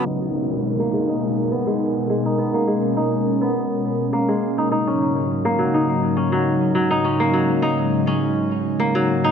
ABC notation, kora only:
X:1
M:4/4
L:1/16
Q:"Swing 16ths" 1/4=103
K:G#m
V:1 name="Kora"
D B, z3 A, G, D3 B, G,3 G, D | B, A, G, z D3 B, z4 A, G, z D | D C z3 A, F, D3 C F,3 F, D | C A, F, z D3 C z4 A, F, z D |]